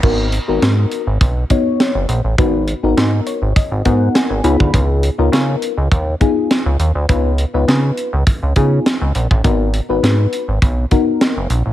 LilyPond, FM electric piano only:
\new Staff \with { instrumentName = "FM electric piano" } { \time 4/4 \key gis \dorian \tempo 4 = 102 << { r1 | r4. cis''8 dis''8 fis''8 gis''8 b''8 | r1 | r1 |
r1 | } \\ { <b dis' fis' ais'>8 r16 <b dis' fis' ais'>4 r8. <b dis' fis' cis''>8. r8. | <b dis' fis' b'>8 r16 <b dis' fis' ais'>4 r8. <b dis' fis' ais'>8. r16 <b dis' eis' gis'>8~ | <b dis' eis' gis'>8 r16 <b dis' eis' ais'>4 r8. <b dis' eis' gis'>8. r8. | <b dis' eis' b'>8 r16 <b dis' eis' b'>4 r8. <b dis' eis' gis'>8. r8. |
<b dis' fis' ais'>8 r16 <b dis' fis' b'>4 r8. <b dis' fis' ais'>8. r8. | } >> }